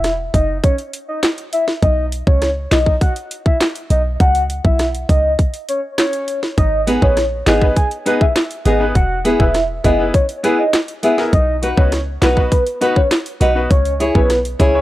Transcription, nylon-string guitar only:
6.87 7.05 B3 medium
6.87 7.06 D#4 medium
6.87 7.06 G#4 medium
7.46 7.65 B3 medium
7.46 7.65 D#4 medium
7.46 7.65 G#4 medium
8.06 8.24 B3 medium
8.06 8.25 D#4 medium
8.06 8.25 G#4 medium
8.65 8.84 B3 medium
8.65 8.84 D#4 medium
8.65 8.84 G#4 medium
9.25 9.43 B3 medium
9.25 9.43 E4 medium
9.25 9.44 G#4 medium
9.84 10.03 B3 medium
9.84 10.03 E4 medium
9.84 10.03 G#4 medium
10.44 10.62 B3 medium
10.44 10.62 E4 medium
10.44 10.62 G#4 loud
11.03 11.21 B3 medium
11.03 11.22 E4 medium
11.03 11.22 G#4 medium
11.62 11.81 D#4 medium
11.62 11.81 F#4 medium
11.62 11.81 B4 medium
12.22 12.40 D#4 medium
12.22 12.40 F#4 medium
12.22 12.41 B4 loud
12.81 13.00 D#4 medium
12.81 13.00 F#4 medium
12.81 13.00 B4 medium
13.41 13.59 D#4 medium
13.41 13.59 F#4 medium
13.41 13.60 B4 medium
14.00 14.18 E4 medium
14.00 14.19 G#4 medium
14.00 14.19 C#5 medium
14.59 14.78 E4 medium
14.59 14.78 G#4 medium
14.59 14.78 C#5 medium

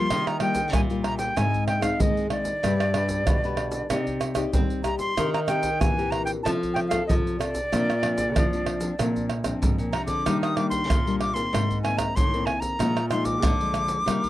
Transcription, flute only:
0.00 0.29 C6 loud
0.27 0.40 A#5 medium
0.41 0.71 G5 medium
0.74 0.81 G#5 medium
1.03 1.18 A#5 medium
1.18 1.39 G5 medium
1.37 1.67 G#5 medium
1.67 1.84 G5 medium
1.82 2.02 F5 medium
2.01 2.30 D#5 medium
2.31 4.18 D5 medium
4.84 4.98 A#5 medium
4.99 5.30 C6 medium
5.34 5.40 A#5 medium
5.47 5.82 G5 medium
5.80 6.12 G#5 medium
6.11 6.24 A#5 medium
6.25 6.31 G5 medium
6.43 6.50 A5 medium
6.74 6.80 G5 medium
6.88 7.05 F5 medium
7.07 7.14 D#5 medium
7.37 9.26 D5 medium
9.92 10.06 A#5 medium
10.06 10.38 D6 medium
10.42 10.58 D#6 medium
10.56 10.69 D6 medium
10.70 11.16 C6 medium
11.20 11.35 D6 loud
11.34 11.82 C6 medium
11.83 11.99 G#5 medium
11.98 12.17 A#5 medium
12.16 12.47 C6 medium
12.46 12.62 G#5 medium
12.60 13.09 A#5 medium
13.09 13.26 C6 medium
13.25 14.29 D6 loud

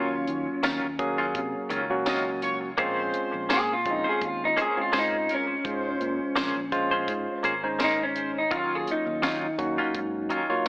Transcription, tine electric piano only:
0.00 0.88 F#3 medium
0.00 0.88 A#3 medium
0.00 0.88 C#4 medium
0.00 0.88 F4 medium
0.99 1.79 F#3 loud
0.99 1.79 A#3 medium
0.99 1.79 C#4 loud
0.99 1.79 G#4 loud
1.90 2.69 F#3 medium
1.90 2.69 A#3 medium
1.90 2.69 C#4 medium
1.90 2.69 F#4 medium
2.78 3.75 G#3 medium
2.78 3.75 C4 medium
2.78 3.75 C#4 medium
2.78 3.75 F4 loud
3.86 4.66 G#3 medium
3.86 4.66 C4 medium
3.86 4.66 C#4 medium
3.86 4.66 F4 loud
4.77 5.55 G#3 medium
4.77 5.55 C4 medium
4.77 5.56 C#4 medium
4.77 5.56 F4 medium
5.65 6.61 G#3 medium
5.65 6.61 C#4 medium
5.65 6.61 F4 medium
5.65 6.61 C5 medium
6.72 7.52 G#3 loud
6.72 7.52 C#4 medium
6.72 7.52 F4 loud
6.72 7.52 C5 medium
7.64 8.42 G#3 medium
7.64 8.42 C#4 medium
7.64 8.42 D#4 medium
7.64 8.42 C5 medium
8.51 9.48 F#3 medium
8.51 9.48 A#3 medium
8.51 9.48 C#4 medium
8.51 9.48 F4 medium
9.58 10.39 F#3 medium
9.58 10.39 A#3 medium
9.58 10.39 C#4 medium
9.58 10.39 F#4 medium
10.50 10.68 F#3 medium
10.50 10.68 A#3 medium
10.50 10.68 F4 loud
10.50 10.68 C#5 medium

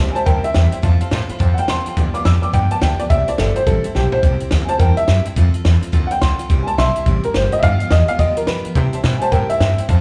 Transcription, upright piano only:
0.11 0.13 G#5 medium
0.15 0.25 C5 medium
0.15 0.26 A5 medium
0.26 0.42 A#4 medium
0.26 0.43 G5 loud
0.44 0.72 E5 loud
1.54 1.56 F#5 medium
1.59 1.69 G5 loud
1.69 1.97 C6 medium
2.14 2.25 D6 loud
2.25 2.42 E6 medium
2.42 2.53 D6 medium
2.53 2.70 G5 loud
2.71 2.82 A5 medium
2.82 2.99 G5 medium
3.00 3.10 D5 medium
3.10 3.27 E5 loud
3.29 3.39 D5 loud
3.39 3.56 A4 loud
3.56 3.66 C5 loud
3.67 3.84 A4 loud
3.96 4.12 G4 loud
4.12 4.23 C5 loud
4.64 4.79 C5 medium
4.64 4.66 G#5 medium
4.69 4.80 A5 medium
4.79 4.96 A#4 medium
4.79 4.97 G5 medium
4.97 5.25 E5 loud
6.07 6.09 F#5 medium
6.11 6.21 G5 medium
6.21 6.66 C6 medium
6.63 6.65 G#5 medium
6.67 6.78 A5 medium
6.78 7.04 E5 loud
6.78 7.06 C6 loud
7.25 7.35 A#4 loud
7.35 7.52 C5 medium
7.53 7.63 D#5 loud
7.59 7.61 E5 medium
7.63 7.90 F5 loud
7.92 8.08 D#5 loud
8.09 8.19 F5 medium
8.19 8.36 D#5 loud
8.37 8.47 A#4 medium
8.48 8.64 B4 loud
9.18 9.31 C5 medium
9.18 9.19 G#5 medium
9.22 9.32 A5 medium
9.32 9.48 A#4 medium
9.32 9.49 G5 medium
9.50 9.77 E5 loud

